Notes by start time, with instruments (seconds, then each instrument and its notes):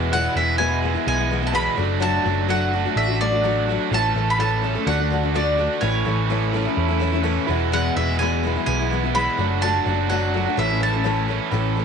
Already playing: picked electric bass E1, steel-string acoustic guitar E3 G#3 B3 E4, overdriven electric guitar E4, reed electric piano G#4 B4 E5
0.13 steel-string acoustic guitar E2 B2 E3 G#3 B3 E4, mandolin F#5
0.35 picked electric bass E1, steel-string acoustic guitar E3 G#3 B3 E4, mandolin E5
0.58 steel-string acoustic guitar E2 B2 E3 G#3 B3 E4, reed electric piano G#4 B4 E5, mandolin G#5
0.81 steel-string acoustic guitar E3 G#3 B3, overdriven electric guitar E4
0.86 steel-string acoustic guitar E4
0.94 steel-string acoustic guitar E3 G#3 B3 E4
1.07 picked electric bass B1, reed electric piano G#4 B4 E5, mandolin G#5
1.18 steel-string acoustic guitar E3 G#3 B3 E4
1.30 steel-string acoustic guitar E3 G#3 B3 E4
1.41 steel-string acoustic guitar E3 G#3 B3 E4
1.47 mandolin A5
1.52 steel-string acoustic guitar E2 B2 E3 G#3 B3 E4, reed electric piano G#4 B4 E5, mandolin B5
1.76 picked electric bass F#1, steel-string acoustic guitar F#3 A3 D4 F#4, reed electric piano F#4 A4 D5
1.80 overdriven electric guitar F#3
2.00 steel-string acoustic guitar F#3 A3 D4 F#4, mandolin A5
2.23 picked electric bass F#1, steel-string acoustic guitar F#3 A3 D4 F#4
2.48 steel-string acoustic guitar F#3 A3 D4 F#4, reed electric piano F#4 A4 C#5, mandolin F#5
2.71 steel-string acoustic guitar F#3 A3 D4, overdriven electric guitar F#4
2.76 steel-string acoustic guitar F#4
2.85 steel-string acoustic guitar A3 D4 F#4
2.96 picked electric bass A1, reed electric piano F#4 A4 D5, mandolin E5
3.07 steel-string acoustic guitar A3 D4 F#4
3.20 steel-string acoustic guitar F#3 A3 D4 F#4, mandolin D5
3.32 steel-string acoustic guitar A3 D4 F#4
3.44 steel-string acoustic guitar F#3 A3 D4 F#4, reed electric piano F#4 A4 D5
3.66 steel-string acoustic guitar F#3 A3, overdriven electric guitar F#4
3.71 steel-string acoustic guitar D4 F#4
3.91 picked electric bass A1, steel-string acoustic guitar A2 E3 A3 C#4 A4, reed electric piano E4 A4 C#5, mandolin A5
4.15 picked electric bass A1, steel-string acoustic guitar E3 A3 C#4 A4
4.30 mandolin B5
4.39 steel-string acoustic guitar A2 E3 A3 C#4 A4, reed electric piano E4 A4 C#5, mandolin A5
4.62 steel-string acoustic guitar E3 A3 C#4 A4
4.75 steel-string acoustic guitar A3 C#4 A4
4.85 picked electric bass D2, steel-string acoustic guitar D3 A3 D4 F#4, reed electric piano F#4 A4 D5, mandolin F#5
4.98 steel-string acoustic guitar A3 D4 F#4
5.10 steel-string acoustic guitar D3 A3 D4 F#4
5.23 steel-string acoustic guitar A3 D4 F#4
5.34 steel-string acoustic guitar D3 A3 D4 F#4, reed electric piano F#4 A4 D5, mandolin D5
5.56 steel-string acoustic guitar D3 A3 D4, overdriven electric guitar F#4
5.60 steel-string acoustic guitar F#4
5.81 picked electric bass A1, steel-string acoustic guitar A2 E3 A3 C#4 E4, reed electric piano E4 A4 C#5, mandolin C#5
6.05 picked electric bass A1, steel-string acoustic guitar E3 A3 C#4 E4
6.30 steel-string acoustic guitar A2 E3 A3 C#4 E4, reed electric piano E4 A4 E5
6.51 steel-string acoustic guitar E3 A3 C#4, overdriven electric guitar E4
6.57 steel-string acoustic guitar E4
6.65 steel-string acoustic guitar A3 C#4 E4
6.77 picked electric bass E2, reed electric piano E4 A4 C#5
6.88 steel-string acoustic guitar A3 C#4 E4
7.00 steel-string acoustic guitar E3 A3 C#4 E4
7.12 steel-string acoustic guitar A3 C#4 E4
7.23 steel-string acoustic guitar A2 E3 A3 C#4 E4, reed electric piano E4 A4 C#5
7.46 picked electric bass E1, overdriven electric guitar B2, steel-string acoustic guitar E3 G#3 B3, reed electric piano E4 G#4 B4
7.50 overdriven electric guitar E2, steel-string acoustic guitar E4
7.72 steel-string acoustic guitar E2 B2 E3 G#3 B3 E4, mandolin F#5
7.96 picked electric bass E1, steel-string acoustic guitar E3 G#3 B3 E4, mandolin E5
8.19 steel-string acoustic guitar E2 B2 E3 G#3 B3 E4, reed electric piano E4 G#4 B4, mandolin G#5
8.43 steel-string acoustic guitar E3 G#3 B3 E4
8.56 steel-string acoustic guitar E3 G#3 B3 E4
8.66 picked electric bass B1, reed electric piano E4 G#4 B4, mandolin G#5
8.79 steel-string acoustic guitar E3 G#3 B3 E4
8.91 steel-string acoustic guitar E3 G#3 B3 E4
9.03 steel-string acoustic guitar E3 G#3 B3 E4
9.14 steel-string acoustic guitar E2 B2 E3 G#3 B3 E4, reed electric piano E4 G#4 B4, mandolin B5
9.37 picked electric bass F#1, steel-string acoustic guitar F#3 A3 D4 F#4, reed electric piano F#4 A4 D5
9.61 steel-string acoustic guitar F#3 A3 D4 F#4, mandolin A5
9.86 picked electric bass F#1, steel-string acoustic guitar F#3 A3 D4 F#4
10.10 steel-string acoustic guitar F#3 A3 D4 F#4, reed electric piano F#4 A4 C#5, mandolin F#5
10.34 steel-string acoustic guitar F#3 A3 D4 F#4
10.46 steel-string acoustic guitar A3 D4 F#4
10.57 picked electric bass A1, steel-string acoustic guitar A2 E3 A3 C#4 A4, reed electric piano E4 A4 C#5, overdriven electric guitar E4, mandolin E5
10.70 steel-string acoustic guitar A3 C#4 A4
10.80 steel-string acoustic guitar E3 A3 C#4 A4, mandolin A5
10.93 steel-string acoustic guitar A3 C#4 A4
11.04 steel-string acoustic guitar A2 E3 A3 C#4 A4, reed electric piano E4 A4 C#5
11.08 overdriven electric guitar E4
11.27 steel-string acoustic guitar E3 A3 C#4 A4, overdriven electric guitar E4
11.51 picked electric bass A1, steel-string acoustic guitar A2 E3 A3 C#4 A4, overdriven electric guitar E4
11.76 steel-string acoustic guitar E3 A3 C#4 A4